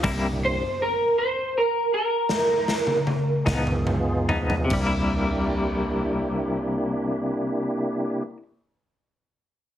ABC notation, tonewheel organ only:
X:1
M:12/8
L:1/8
Q:3/8=47
K:Cmix
V:1 name="Tonewheel organ"
[B,DEG]2 z6 z [_C_EF_A]3 | [B,DEG]12 |]